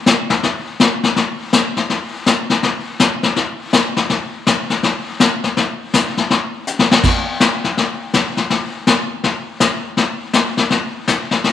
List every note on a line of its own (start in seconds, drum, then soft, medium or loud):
0.06 snare medium
0.06 hi-hat pedal medium
0.30 snare medium
0.43 brush sweep soft
0.43 snare soft
0.80 snare medium
0.80 hi-hat pedal medium
1.03 snare soft
1.16 brush sweep soft
1.16 snare soft
1.53 snare medium
1.53 hi-hat pedal medium
1.77 snare soft
1.90 brush sweep medium
1.90 snare soft
2.26 snare medium
2.26 hi-hat pedal soft
2.50 snare soft
2.63 brush sweep soft
2.63 snare soft
3.00 snare medium
3.00 hi-hat pedal medium
3.23 snare soft
3.36 brush sweep medium
3.36 snare soft
3.73 snare medium
3.73 hi-hat pedal medium
3.97 snare soft
4.10 brush sweep medium
4.10 snare medium
4.47 snare medium
4.47 hi-hat pedal medium
4.70 snare soft
4.83 brush sweep soft
4.83 snare soft
5.20 snare medium
5.20 hi-hat pedal medium
5.44 snare soft
5.57 brush sweep medium
5.57 snare soft
5.94 snare medium
5.94 hi-hat pedal medium
6.17 snare soft
6.30 brush sweep soft
6.30 snare soft
6.67 hi-hat pedal medium
6.79 snare medium
6.91 snare medium
7.04 brush sweep soft
7.04 kick medium
7.04 snare soft
7.04 crash medium
7.40 snare medium
7.40 hi-hat pedal medium
7.64 snare soft
7.77 brush sweep medium
7.77 snare soft
8.14 snare medium
8.14 hi-hat pedal medium
8.37 snare soft
8.50 brush sweep medium
8.50 snare soft
8.87 snare medium
8.87 hi-hat pedal medium
9.24 brush sweep medium
9.24 snare soft
9.60 snare medium
9.60 hi-hat pedal medium
9.97 brush sweep medium
9.97 snare soft
10.33 snare medium
10.33 hi-hat pedal medium
10.57 snare soft
10.70 brush sweep medium
10.70 snare soft
11.08 snare medium
11.08 hi-hat pedal medium
11.31 snare soft
11.44 brush sweep soft
11.44 snare soft